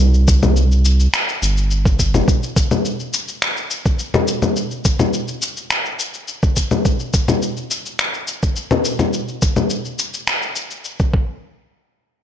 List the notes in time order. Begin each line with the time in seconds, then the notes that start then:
0.00 C2
0.14 shaker
0.28 kick, shaker
0.43 low conga, shaker
0.57 shaker
0.72 shaker
0.85 shaker
1.00 shaker
1.14 finger snap, shaker
1.29 shaker
1.42 G1, shaker
1.57 shaker
1.71 shaker
1.85 kick, shaker
1.99 kick, shaker
2.14 low conga, shaker
2.28 kick, shaker
2.43 shaker
2.56 kick, shaker
2.71 low conga, shaker
2.85 shaker
3.00 shaker
3.14 shaker
3.28 shaker
3.42 finger snap, shaker
3.57 shaker
3.71 shaker
3.85 kick, shaker
3.99 shaker
4.14 low conga, shaker
4.28 shaker
4.42 low conga, shaker
4.56 shaker
4.71 shaker
4.85 kick, shaker
4.99 low conga, shaker
5.14 shaker
5.28 shaker
5.42 shaker
5.57 shaker
5.70 finger snap, shaker
5.85 shaker
5.99 shaker
6.14 shaker
6.28 shaker
6.43 kick, shaker
6.56 kick, shaker
6.71 low conga, shaker
6.85 kick, shaker
7.00 shaker
7.14 kick, shaker
7.28 low conga, shaker
7.42 shaker
7.57 shaker
7.71 shaker
7.86 shaker
7.99 finger snap, shaker
8.14 shaker
8.28 shaker
8.43 kick, shaker
8.56 shaker
8.71 low conga, shaker
8.85 shaker
8.99 low conga, shaker
9.13 shaker
9.28 shaker
9.42 kick, shaker
9.56 low conga, shaker
9.70 shaker
9.85 shaker
9.99 shaker
10.14 shaker
10.27 finger snap, shaker
10.42 shaker
10.56 shaker
10.71 shaker
10.85 shaker
10.99 kick, shaker
11.14 kick